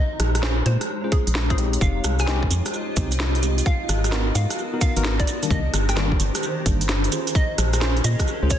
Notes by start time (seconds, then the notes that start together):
Already playing: G#3 D#4 C#5 D#5 A#5
0.20 A#1, cross-stick, closed hi-hat
0.35 cross-stick, closed hi-hat
0.43 C#4 F4 G#4 C5, snare
0.66 A#2 C5, closed hi-hat
0.81 cross-stick, closed hi-hat
1.04 C#4 F4 G#4 C5
1.12 G#4, kick, closed hi-hat
1.27 A#1, closed hi-hat
1.35 snare
1.50 C#4 F4 G#4 C5, kick, closed hi-hat
1.58 G#3 C4 D#4 G4, closed hi-hat
1.73 closed hi-hat
1.81 F1 G#3 D#4 F4 G4 C5 F5, kick, maracas
2.04 C2, cross-stick, closed hi-hat, maracas
2.15 D#5
2.19 G#5, cross-stick, closed hi-hat, maracas
2.27 G#3 C4 D#4 G4, snare, maracas
2.43 kick
2.51 F2, closed hi-hat, maracas
2.65 cross-stick, closed hi-hat, maracas
2.74 maracas
2.96 C2 G#3 C4 D#4 G4, kick, closed hi-hat, maracas
3.11 closed hi-hat, maracas
3.20 snare, maracas
3.35 closed hi-hat
3.43 G#3 C4 D#4 G4, closed hi-hat, maracas
3.58 closed hi-hat, maracas
3.66 B3 F#4 A#4 F5, kick, maracas
3.89 G#1, cross-stick, closed hi-hat, maracas
3.97 B3
4.04 cross-stick, closed hi-hat, maracas
4.12 B3 D#4 F#4 A#4, snare, maracas
4.35 G#2 F5, closed hi-hat, maracas
4.50 cross-stick, closed hi-hat, maracas
4.59 maracas
4.74 B3 D#4 F#4 A#4
4.81 F5, kick, closed hi-hat, maracas
4.96 G#1 B3 D#4 F#4 A#4, closed hi-hat, maracas
5.04 snare, maracas
5.20 D5, kick, closed hi-hat
5.27 D#3 D4 G4, closed hi-hat, maracas
5.34 C5
5.43 D#3 G3 A#3 D4, closed hi-hat, maracas
5.50 C2 D#5, kick, maracas
5.74 G1, cross-stick, closed hi-hat, maracas
5.89 G5, cross-stick, closed hi-hat, maracas
5.96 D#3 G3 A#3 D4 A#5, snare, maracas
6.12 kick
6.20 G1, closed hi-hat, maracas
6.35 cross-stick, closed hi-hat, maracas
6.43 maracas
6.66 G1 D#3 G3 A#3 D4, kick, closed hi-hat, maracas
6.81 closed hi-hat, maracas
6.89 snare, maracas
7.04 closed hi-hat
7.12 C#4 F4 G#4 C5, closed hi-hat, maracas
7.27 closed hi-hat, maracas
7.35 D#5, kick, maracas
7.41 A#4
7.58 A#1, cross-stick, closed hi-hat, maracas
7.73 cross-stick, closed hi-hat, maracas
7.81 C#4 F4 G#4 C5, snare, maracas
7.97 closed hi-hat
8.04 A#2 D#5, closed hi-hat, maracas
8.19 kick, cross-stick, closed hi-hat, maracas
8.27 maracas
8.43 C#2 C#4 F4 G#4 C5
8.50 A#1 C#5, kick, closed hi-hat, maracas